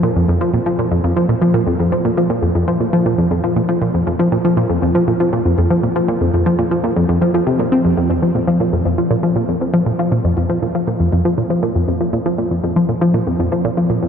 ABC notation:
X:1
M:4/4
L:1/16
Q:1/4=119
K:Cm
V:1 name="Synth arpeggio sound" clef=bass
B,, F,, F,, F, B,, F, B,, F,, F,, F, B,, F, B,, F,, F,, F, | B,, F, B,, F,, F,, F, B,, F, B,, F,, F,, F, B,, F, B,, F,, | F,, F, B,, F, B,, F,, F,, F, B,, F, B,, F,, F,, F, B,, F, | B,, F,, F,, F, B,, F, B,, F,, F,, F, F, C, B,, C F,, F,, |
F,, F, B,, F, B,, F,, F,, F, B,, F, B,, F,, F,, F, B,, F, | B,, F,, F,, F, B,, F, B,, F,, F,, F, B,, F, B,, F,, F,, F, | B,, F, B,, F,, F,, F, B,, F, B,, F,, F,, F, B,, F, B,, F,, |]